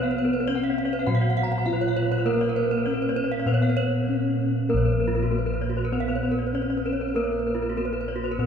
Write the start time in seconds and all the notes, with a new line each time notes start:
Already playing: B2 B3 B4
0.03 F5
0.11 B4
0.18 C#5
0.25 A#4
0.33 B4
0.40 A#4
0.47 B3 C#4 C#5
0.55 F#5
0.64 F5
0.70 C#5
0.78 F5
0.85 C#5
0.93 B4
0.99 F5
1.07 A#2 F#3 F#4 F#5
1.15 F5
1.22 C#5
1.30 F#5
1.37 F5
1.43 A#5
1.52 F#5
1.58 A#5
1.66 B3 F4 F5
1.73 B4
1.81 C#5
1.88 F5
1.97 C#5
2.03 B4
2.12 C#5
2.18 B4
2.26 A#3 A#4
2.34 B4
2.41 C#5
2.49 A#4
2.56 B4
2.64 A#4
2.71 B4
2.78 A#4
2.86 B3 C#4 C#5
2.94 A#4
3.02 B4
3.09 C#5
3.16 B4
3.24 C#5
3.32 F5
3.39 C#5
3.46 A#2 B3 B4
3.54 C#5
3.62 F5
3.70 B4
3.77 C#5
4.08 B3 C#4
4.69 A#3 A#4
4.74 A#1 C#5
4.85 A#4
4.92 B4
5.00 A#4
5.08 F4
5.15 A#4
5.23 F#4
5.30 A#3 B3 A#4
5.38 B4
5.46 A#4
5.54 B4
5.61 C#5
5.70 F#4
5.77 B4
5.85 A#4
5.92 B3 B4
6.00 F5
6.08 B4
6.16 C#5
6.23 B4
6.31 A#4
6.39 C#5
6.47 B4
6.53 B3 C#4 C#5
6.62 B4
6.70 C#5
6.78 B4
6.86 A#4
6.93 C#5
7.01 A#4
7.08 B4
7.15 A#3 A#4
7.24 C#5
7.32 A#4
7.39 B4
7.47 A#4
7.55 F4
7.62 A#4
7.69 F#4
7.77 A#3 B3 A#4
7.85 B4
7.93 A#4
8.01 B4
8.08 C#5
8.16 F#4
8.24 B4
8.31 A#4
8.38 A#2 B3 B4